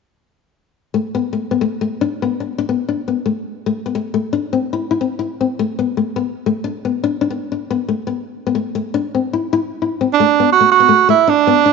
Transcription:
0.94 A3
1.15 B3
1.33 A3
1.51 B3
1.61 A3
1.81 A3
2.01 D4
2.22 B3
2.40 D4
2.58 D4
2.69 B3
2.89 D4
3.08 B3
3.26 A3
3.66 A3
3.86 B3
3.95 A3
4.14 A3
4.33 D4
4.53 C4
4.73 E4
4.91 E4
5.01 C4
5.19 E4
5.41 C4
5.59 A3
5.79 B3
5.97 A3
6.16 B3
6.46 A3
6.64 D4
6.85 B3
7.04 D4
7.21 D4
7.30 B3
7.52 D4
7.71 B3
7.89 A3
8.07 B3
8.47 B3
8.55 A3
8.75 A3
8.94 D4
9.15 C4
9.33 E4
9.53 E4
9.82 E4
10.01 C4
10.13 D4
10.20 A3
10.40 B3
10.53 F#4
10.61 A3
10.71 F#4
10.80 B3
10.89 A3
11.09 A3 E4
11.28 D4
11.47 B3
11.66 D4

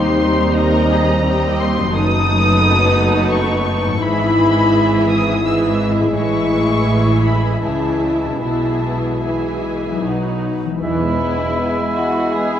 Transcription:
Already playing: D#2 D#3 G3 C4 D#4 G4 C5 C6
0.22 D#4
0.56 G3 A#4 D#5 A#5
0.92 G#4
1.26 G3 C4 G4 D#5
1.61 C6
1.77 F#2
1.82 B3
1.86 D#4
1.91 F#1 F#2 F#3 A3 B3 D#4 A4 B4
1.95 D#6
3.33 C#6
3.86 G#2
3.90 B3
3.94 E4
3.99 E3 G#4
4.03 G#1 G#2 G#3 E4 G#4 E5 B5
5.10 D#6
5.45 E3 E4 G#4 E5 E6
5.99 A2
6.04 G#3
6.08 E4
6.13 A2 C#5 C#6
6.17 A1 E3 E4 G#4 E5
7.25 B5
7.63 C#2 C#3 E3 E4 G#4 E5 A5
8.25 B2
8.29 G#3
8.34 E4
8.38 B4
8.42 B1 B2 E3 G#3 E4 G#4 E5 A5
9.24 E3 E4 G#4 E5 G#5
9.87 B2
9.92 F#3
9.96 D#4
10.00 F#3 D#4 B4
10.05 B1 B2 F#3 D#4 F#4 B4
10.65 E3
10.69 G#3
10.74 E4
10.79 E2 B4 G#5 B5
10.83 E1 E3 G#3 B3 E4 E5
11.02 G#3
11.21 B3
11.40 E4
11.59 B3
11.78 G#3
11.96 E3 F#4
12.16 G#3
12.34 B3 G#4
12.53 E4

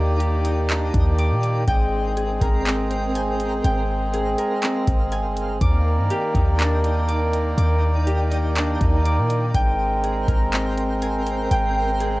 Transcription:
Already playing: D#2 D#3 A#3 D4 D#4 G4 D5 G5 D6
0.20 G4, closed hi-hat
0.44 D#4, closed hi-hat
0.69 D4, clap, closed hi-hat
0.94 D#2, kick, closed hi-hat
1.19 D6, closed hi-hat
1.31 A#2
1.43 closed hi-hat
1.68 G#1 G#3 C4 G#4 A#4 G5, kick, closed hi-hat
2.17 G#4, closed hi-hat
2.41 G#1 A#4, kick, closed hi-hat
2.66 C4, clap, closed hi-hat
2.91 closed hi-hat
3.15 G#5, closed hi-hat
3.40 closed hi-hat
3.64 G#1 G#4 F5 G5, closed hi-hat
4.14 G#4, closed hi-hat
4.38 A#4, closed hi-hat
4.63 C4, clap, closed hi-hat
4.87 G#1, kick, closed hi-hat
5.12 G#5, closed hi-hat
5.24 G1
5.37 closed hi-hat
5.61 D#2 D#3 A#3 D#4 A#4 D5 G5 D6, kick, closed hi-hat
5.98 G2
6.10 G4, closed hi-hat
6.35 D#2 D#4, kick, closed hi-hat
6.59 D4, clap, closed hi-hat
6.84 closed hi-hat
7.08 D6, closed hi-hat
7.33 closed hi-hat
7.58 D#2 D6, closed hi-hat
8.07 G4, closed hi-hat
8.31 D#4, closed hi-hat
8.56 D4, clap, closed hi-hat
8.81 D#2, kick, closed hi-hat
9.05 D6, closed hi-hat
9.18 A#2
9.30 closed hi-hat
9.54 G#1 G#3 C4 A#4 G5, kick, closed hi-hat
10.03 G#4, closed hi-hat
10.28 G#1 A#4, kick, closed hi-hat
10.53 C4, clap, closed hi-hat
10.78 closed hi-hat
11.02 G#5, closed hi-hat
11.27 closed hi-hat
11.51 G#1 G5, closed hi-hat
12.00 G#4, closed hi-hat

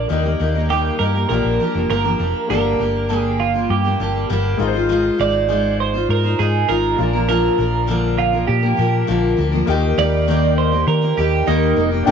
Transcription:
0.08 D#2 D#3 G3 A#3 D#4 G4
0.12 D#5
0.23 A#3 D#4 G4
0.39 D#2 G3 A#3 D#4 G4
0.54 A#3 D#4 G4
0.69 D#3 G3 A#3 D#4 G4
0.99 G2 G3 A#3 D#4 G4 A#4
1.14 A#3 D#4 G4
1.28 A#1 A#2 D3 F3 A#3 D4 F4 G4 A#4
1.32 D5
1.45 A#1
1.60 F3 A#3 D4 G4
1.74 F1 F3 A#3 D4 G4
1.90 G1 A#2 D3 F3 A#3 D4 G4 A#4
2.04 F3 A#3 D4 G4
2.19 F1 F3 A#3 D4 G4
2.47 G1 G2 D3 G3 A#3 D4 G4 A#4 D5
2.79 G1 G3 A#3 D4 G4
3.09 G2 D3 G3 A#3 D4 G4
3.16 G#4
3.40 F4
3.54 G3 A#3 D4 G4
3.70 G2 G4
3.84 G3 A#3 D4 G4
4.00 G1 G3 A#3 D4 G4
4.29 G1 G2 D3 G3 A#3 D4 G4
4.57 G#1 G#3 D#4 F4 A#4 C5
4.68 C5
4.74 D#4 F4 C5
4.89 G#3 D#4 F4 C5
5.18 G#1 G#3 D#4 F4 C5 D5
5.48 G#3 D#4 F4 C5
5.80 C5
5.94 D#4 F4 C5
6.09 G#2 A#4
6.23 D#4 F4 C5
6.39 G#2 G#3 D#4 F4 G#4 C5
6.68 G#1 G#3 D#4 F4 A#4 C5
6.96 A#1 F3 A#3 D4 F4
7.00 A#4 D5
7.13 F3 A#3 D4 A#4
7.29 A#2 D3 F3 A#3 D4 A#4
7.58 A#1 F3 A#3 D4 A#4
7.87 A#2 D3 F3 A#3 D4 A#4
8.19 F4
8.33 F3 A#3 D4 A#4
8.47 A#2 G4
8.63 F3 A#3 D4 A#4
8.77 A#2 F3 A#3 D4 A#4
9.07 A#1 A#2 D3 F3 A#3 D4 A#4
9.37 D2 F3 A#3 D4 A#4
9.52 F3 A#3 D4 A#4
9.66 D#2 D#3 G3 A#3 D#4 G4 G5
9.97 D#2 G3 A#3 D#4 G4 D5
10.27 D#3 G3 A#3 D#4 G4
10.58 C5
10.72 A#3 D#4 G4
10.87 D#3 A#4
11.02 A#3 D#4 G4
11.17 D#2 G3 A#3 D#4 G4
11.45 D#2 D#3 G3 A#3 D#4 G4 D#5
11.76 F1 G3 A#3 D#4 G4
11.92 A#3 D#4 G4
12.04 G1 G2 A#2 D3 G3 A#3 D4 G5
12.08 D3 A#3 D4 G4 A#4

